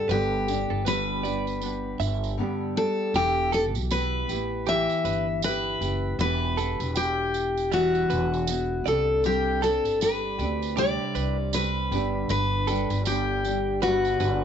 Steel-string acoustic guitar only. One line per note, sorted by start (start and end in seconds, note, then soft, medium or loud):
0.11 0.87 G4 loud
0.88 1.97 B4 medium
2.77 3.15 A4 medium
3.16 3.50 G4 loud
3.54 3.64 A4 loud
3.91 4.68 B4 medium
4.69 5.44 E5 loud
5.44 6.16 B4 loud
6.21 6.98 B4 loud
6.97 7.73 G4 medium
7.73 8.87 F#4 loud
8.88 9.22 A4 medium
9.26 9.63 G4 loud
9.64 9.99 A4 medium
10.02 10.78 B4 loud
10.78 11.54 D5 loud
11.54 12.29 B4 medium
12.30 13.02 B4 loud
13.07 13.82 G4 medium
13.83 14.44 F#4 medium